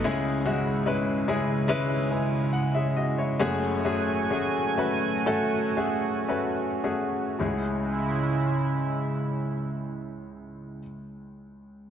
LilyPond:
<<
  \new Staff \with { instrumentName = "Upright piano" } { \time 4/4 \key cis \minor \tempo 4 = 61 << { r2 r8 <b' gis''>8 fis''16 <gis' e''>16 <fis' dis''>16 <e' cis''>16~ | <e' cis''>16 r2. r8. | r1 | } \\ { <gis cis' e' gis'>8 <gis cis' e' fis'>8 <gis cis' e' b'>8 <gis cis' e' gis'>8 <gis cis' e' b'>8 r4. | <a cis' fis' gis'>8 <a cis' fis' gis'>8 <a cis' fis' gis'>8 <a cis' fis' b'>8 <a cis' fis' a'>8 <a cis' fis' gis'>8 <a cis' fis' b'>8 <a cis' fis' gis'>8 | <gis cis' e' gis'>1 | } >> }
  \new Staff \with { instrumentName = "Upright piano" } { \clef bass \time 4/4 \key cis \minor <cis, cis>1 | <fis,, fis,>1 | cis,1 | }
  \new Staff \with { instrumentName = "Analog synth pad" } { \time 4/4 \key cis \minor <cis gis e'>1 | <a fis' gis''>1 | <cis gis e'>1 | }
>>